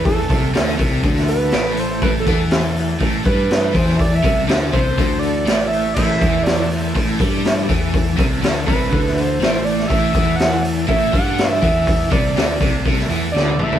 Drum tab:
CC |----------------|----------------|----------------|x---------------|
HH |o-o-o-o-o-o-o-o-|o-o-o-o-o-o-o-o-|o-o-o-o-o-o-o-o-|--o-o-o-o-o-o-o-|
SD |----o----o--o---|----o-------o--o|----o-------o---|----o-------o---|
T1 |----------------|----------------|----------------|----------------|
T2 |----------------|----------------|----------------|----------------|
FT |----------------|----------------|----------------|----------------|
BD |o-o---o-o-------|o-o-----o-o---o-|o-o---o-o-------|o-o-----o-o---o-|

CC |----------------|----------------|----------------|
HH |o-o-o-o-o-o-o-o-|o-o-o-o-o-o-o-o-|o-o-o-o-o-o-----|
SD |----o----o--o--o|----o-------o---|----o----o--o---|
T1 |----------------|----------------|-------------o--|
T2 |----------------|----------------|--------------o-|
FT |----------------|----------------|---------------o|
BD |o-o---o-o-------|o-o-----o-o---o-|o-o---o-o-------|